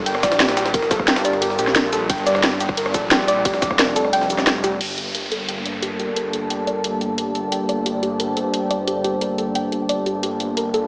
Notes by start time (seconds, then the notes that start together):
Already playing: G1 G3 D4 G4 A#4
0.06 G5, closed hi-hat, ride
0.15 cross-stick, ride
0.23 A#1 D5, kick, snare, closed hi-hat, ride, cabasa
0.32 snare, ride
0.40 G4, snare, closed hi-hat, ride
0.49 snare, ride
0.57 G4, snare, closed hi-hat, ride, cabasa
0.66 snare, ride
0.74 G1 A#4, kick, closed hi-hat, ride
0.82 snare
0.91 A4, kick, snare, closed hi-hat, ride, cabasa
0.99 kick, cross-stick
1.08 G5, snare, closed hi-hat, ride
1.16 snare, ride
1.25 D5, closed hi-hat, ride, cabasa
1.33 cross-stick, ride
1.42 G4, closed hi-hat, ride
1.50 snare
1.59 A#1 G4, closed hi-hat, ride, cabasa
1.67 cross-stick, snare, ride
1.76 A#4, snare, closed hi-hat, ride
1.93 A4, snare, closed hi-hat, ride, cabasa
2.10 G1 D5 G5, kick, closed hi-hat, ride
2.18 ride
2.26 D5, closed hi-hat, ride, cabasa
2.35 cross-stick, snare
2.43 G4, snare, closed hi-hat, ride
2.60 G4, closed hi-hat, ride, cabasa
2.69 kick, cross-stick
2.77 A#4, closed hi-hat, ride
2.86 cross-stick, ride
2.94 A#1 A4, kick, snare, closed hi-hat, ride, cabasa
3.11 G5, snare, closed hi-hat, ride
3.28 D5, closed hi-hat, ride, cabasa
3.45 F1 G4, kick, closed hi-hat, ride
3.54 snare
3.62 G4, kick, snare, closed hi-hat, ride, cabasa
3.71 kick, cross-stick
3.79 A#4, snare, closed hi-hat, ride, cabasa
3.96 A4, closed hi-hat, ride, cabasa
4.05 cross-stick
4.13 G5, closed hi-hat, ride
4.21 snare
4.30 G4, closed hi-hat, ride, cabasa
4.38 cross-stick, snare, ride, cabasa
4.47 G5, snare, closed hi-hat, ride
4.64 G4, snare, closed hi-hat, ride, cabasa
4.81 G1 G3 D4 G4 A4 A#4, closed hi-hat, crash, downlifter
4.87 A#3
4.97 G4 D5, closed hi-hat
5.15 A#4, closed hi-hat
5.23 A5
5.31 A4, closed hi-hat
5.48 G5, closed hi-hat
5.65 D5, closed hi-hat
5.82 G4, closed hi-hat
5.99 G4, closed hi-hat
6.16 A#4, closed hi-hat
6.33 A4, closed hi-hat
6.50 G5, closed hi-hat
6.67 D5, closed hi-hat
6.84 G4, closed hi-hat
7.01 G4, closed hi-hat
7.18 A#4, closed hi-hat
7.35 A4, closed hi-hat
7.52 C5 G5, closed hi-hat
7.69 D5, closed hi-hat
7.86 G4, closed hi-hat
8.03 G4, closed hi-hat
8.20 A#4, closed hi-hat
8.37 A4, closed hi-hat
8.54 G5, closed hi-hat
8.71 D5, closed hi-hat
8.87 G4, closed hi-hat
9.04 G4, closed hi-hat
9.21 A#4, closed hi-hat
9.38 A4, closed hi-hat
9.55 G5, closed hi-hat
9.72 G4, closed hi-hat
9.89 D5, closed hi-hat
10.06 G4, closed hi-hat
10.23 G1 G4 A#4, closed hi-hat
10.40 G4, closed hi-hat
10.57 A#4, closed hi-hat
10.74 A4, closed hi-hat